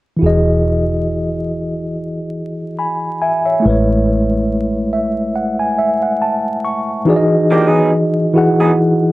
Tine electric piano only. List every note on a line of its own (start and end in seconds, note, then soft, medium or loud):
0.17 3.57 E3 medium
0.17 3.59 E4 soft
0.21 3.60 F#4 medium
0.21 3.61 G#4 medium
0.26 2.76 D#5 medium
2.78 3.19 G#5 soft
2.78 3.19 B5 medium
3.22 3.44 E5 soft
3.22 3.44 G#5 medium
3.45 3.68 C#5 soft
3.45 3.85 E5 soft
3.60 7.00 A3 medium
3.60 7.02 E4 medium
3.65 7.03 G#3 soft
3.65 7.04 B4 medium
3.70 7.05 C#5 medium
4.93 5.32 E5 medium
5.36 5.57 F#5 medium
5.59 5.77 G#5 medium
5.79 6.00 E5 medium
6.03 6.20 F#5 medium
6.22 6.61 A5 medium
6.65 7.04 C#6 medium
7.05 8.09 E3 medium
7.05 8.09 D#4 medium
7.05 8.10 F#4 medium
7.05 8.11 G#4 medium
7.10 7.15 D5 medium
7.16 8.14 D#5 medium
8.33 9.04 E3 medium
8.33 9.04 E4 medium
8.33 9.05 F#4 medium
8.33 9.05 G#4 medium
8.38 9.06 F#5 medium